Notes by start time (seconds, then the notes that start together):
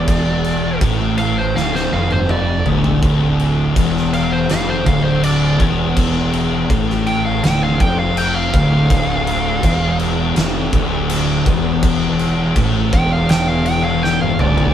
Already playing: E1 E2 D5
0.08 kick, crash
0.44 crash
0.81 A1 A2, kick, crash
1.18 F5, crash
1.38 C5
1.55 D1 D2 F5, snare
1.75 C5, snare
1.92 F1 F2 F5
2.11 C5, high tom
2.29 D5, mid tom
2.66 D1 D2, floor tom
2.84 floor tom
3.02 D1 D2, kick, crash
3.39 crash
3.76 E1 E2, kick, crash
3.97 snare
4.13 F5, crash
4.32 C5
4.49 F1 F2 F5, snare, crash
4.69 C5
4.86 D1 D2 F5, kick, crash
5.04 C5
5.23 D5, crash
5.60 E1 E2, kick, crash
5.97 kick, crash
6.33 crash
6.70 A1 A2, kick, crash
6.90 snare
7.07 G5, crash
7.26 F5
7.43 D1 D2 G5, snare, crash
7.63 F5
7.80 F1 F2 G5, kick, crash
7.99 F5
8.17 G5, crash
8.35 F5
8.54 D1 D2 F5, kick, crash
8.90 D1 D2, kick, crash
9.27 crash
9.63 E1 E2, kick, crash
9.99 crash
10.36 F1 F2, snare, crash
10.73 D1 D2, kick, crash
11.10 crash
11.46 E1 E2, kick, crash
11.83 kick, crash
12.19 crash
12.56 A1 A2, kick, crash
12.93 E1 E2 G5, kick, crash
13.13 F5
13.29 G5, snare, crash
13.48 F5
13.66 G5, crash
13.84 F5
14.03 G5, snare
14.21 F5, high tom
14.39 D1 D2 D5, mid tom
14.58 floor tom